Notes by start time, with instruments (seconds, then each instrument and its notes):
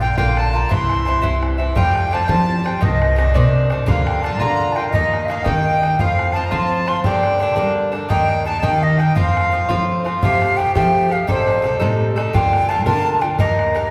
Already playing: upright bass A#1
0.00 bouzouki A#2 D3 A#3 F4, accordion G5, flute G5
0.17 upright bass A#1, bouzouki A#2 D3 A#3 F4, accordion G5, flute G5, bodhran
0.37 flute A5, accordion A5, bodhran
0.53 bouzouki D3 A#3 F4, flute A#5
0.69 upright bass C2, bouzouki G2 E3 C4 E4, accordion C6, flute C6, bodhran
0.90 bodhran
1.05 bouzouki G2 E3 C4 E4, bodhran
1.22 upright bass C2, bouzouki G2 E3 C4 E4, bodhran
1.43 bodhran
1.58 bouzouki E3 C4 E4, bodhran
1.75 upright bass F2, bouzouki A2 G3 C4 F4, flute G5, accordion G5, bodhran
1.95 bodhran
2.07 flute G5
2.11 bouzouki A2 G3 C4 F4, accordion A5, flute A5, bodhran
2.23 accordion G5
2.28 bouzouki A2 G3 C4 F4, upright bass F3, accordion A5, flute A5, bodhran
2.50 bodhran
2.59 flute A5
2.64 bouzouki G3 C4 F4, accordion G5, flute G5, bodhran
2.81 upright bass C2, bouzouki G2 D#3 C4, accordion D#5, flute D#5, bodhran
3.02 bodhran
3.16 bouzouki G2 D#3 C4 D4, bodhran
3.34 bouzouki G2 D#3 C4 D4, upright bass C3, bodhran
3.54 bodhran
3.70 bouzouki D#3 C4 D4, bodhran
3.86 upright bass D2, bouzouki G2 D3 A#3 F4, flute F5, accordion F5, bodhran
4.06 flute G5, bodhran
4.22 bouzouki G2 D3 A#3 F4, flute A5, accordion A5, bodhran
4.38 bouzouki G2 D3 A#3 F4, upright bass D3, flute A#5, accordion A#5, bodhran
4.60 bodhran
4.72 bouzouki F4, flute G5 A5, accordion G5, bodhran
4.78 bouzouki D3 A#3
4.87 flute D#5, accordion F5
4.92 upright bass D#2, bouzouki G2 D#3 A#3 D#4, accordion D#5, bodhran
5.13 bodhran
5.26 bouzouki G2 D#3, flute F5, accordion F5
5.30 bouzouki A#3 D#4, bodhran
5.43 bouzouki G2 D#3 A#3 D#4, flute G5, accordion G5, bodhran
5.47 upright bass D#3
5.82 bouzouki D#3 A#3 D#4, bodhran
5.96 upright bass F2, bouzouki A2 F3, accordion F5, flute G5, bodhran
6.00 bouzouki C4 F4, flute F5
6.19 bodhran
6.33 bouzouki A2 F3 C4 F4, flute A5, accordion A5, bodhran
6.45 flute A#5, accordion A#5
6.50 bouzouki A2 F3 C4 F4, upright bass F3, flute A5, accordion A5, bodhran
6.71 bodhran
6.86 bouzouki F3 C4 F4, accordion C6, flute C6, bodhran
7.04 bouzouki G2 D3 A#3 D4, upright bass G2, flute G5, accordion G5, bodhran
7.23 bodhran
7.39 bouzouki G2 D3 A#3 D4, bodhran
7.56 bouzouki G2 D3 A#3 D4, upright bass G3, bodhran
7.77 bodhran
7.92 bouzouki D3 A#3 D4, bodhran
8.09 upright bass D#2, bouzouki G2 D#3 A#3 D#4, accordion G5, flute G5, bodhran
8.29 bodhran
8.44 bouzouki G2 D#3 A#3 D#4, accordion A5, flute A5, bodhran
8.59 bouzouki D#4, accordion G5 A5
8.63 bouzouki G2 D#3 A#3, upright bass D#3, flute G5, bodhran
8.77 accordion F5
8.81 accordion D#5, flute D#5, bodhran
8.98 bouzouki A#3 D#4, accordion G5, flute G5, bodhran
9.02 bouzouki D#3
9.15 upright bass F2, bouzouki A2 F3 C4 F4, accordion F5, flute F5, bodhran
9.37 bodhran
9.51 bouzouki A2 F3 C4 F4
9.69 bouzouki A2 F3 C4 F4, upright bass F3, bodhran
9.90 bodhran
10.05 bouzouki F3 C4 F4, bodhran
10.22 upright bass F2, bouzouki C3 F3 A3 G4, flute F5, bodhran
10.42 bodhran
10.57 bouzouki C3 F3 A3 G4, flute G5, bodhran
10.75 bouzouki C3 F3 A3 G4, upright bass F3, flute G5, bodhran
10.95 bodhran
11.10 bouzouki F3 A3 G4, flute F5, bodhran
11.27 upright bass A1, bouzouki C3 G3 D#4 A4, flute C5, bodhran
11.48 bodhran
11.62 bouzouki C3 G3 D#4 A4, bodhran
11.80 upright bass A2, bouzouki C3 G3 D#4 A4, bodhran
12.01 bodhran
12.16 bouzouki G3 D#4 A4, bodhran
12.33 upright bass D2, bouzouki G2 D3 F4 A#4, flute G5, bodhran
12.53 bodhran
12.69 bouzouki G2 D3 F4 A#4, flute A5, bodhran
12.86 bouzouki G2 D3 F4 A#4, upright bass D3, flute A5, bodhran
13.06 bodhran
13.21 bouzouki D3 F4 A#4, flute G5, bodhran
13.39 upright bass D#2, bouzouki G2 A#3 D#4 A#4, flute D#5, bodhran
13.59 bodhran
13.75 bouzouki G2 A#3 D#4 A#4, bodhran